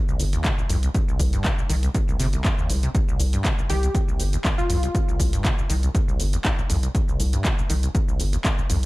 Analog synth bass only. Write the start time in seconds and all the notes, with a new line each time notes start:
0.20 G1
0.70 C2
1.20 C2
1.70 C2
2.20 G1
2.70 C2
3.20 C2
3.70 C2
4.20 G1
4.70 C2
5.20 C2
5.70 C2
6.20 G1
6.70 C2
7.20 C2
7.70 C2
8.20 G1
8.70 C2